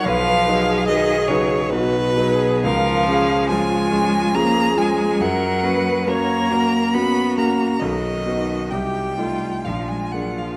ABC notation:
X:1
M:3/4
L:1/16
Q:1/4=69
K:Cblyd
V:1 name="Violin"
f4 ^d2 _d2 =B4 | f4 a4 b2 a2 | g4 b4 c'2 b2 | ^d4 =g4 f a _g f |]
V:2 name="Viola"
=B2 A6 ^F2 A2 | B2 A2 F4 A4 | B2 c2 d2 B2 G4- | G4 =G2 F2 F4 |]
V:3 name="Grand piano"
=B,,,2 [^F,^D=B]2 [F,DB]2 [F,DB]2 [F,DB]2 [F,DB]2 | D,,2 [F,DA]2 [F,DA]2 [F,DA]2 [F,DA]2 [F,DA]2 | G,,2 [B,DG]2 [B,DG]2 [B,DG]2 [B,DG]2 [B,DG]2 | =B,,,2 [=B,^D^F]2 =C,,2 [=A,E=F]2 _B,,,2 [_B,=D_A]2 |]
V:4 name="Cello" clef=bass
F,4 ^D,2 _D,2 =B,,4 | F,4 A,4 B,2 A,2 | G,4 B,4 C2 B,2 | ^D,4 =G,4 F, A, _G, F, |]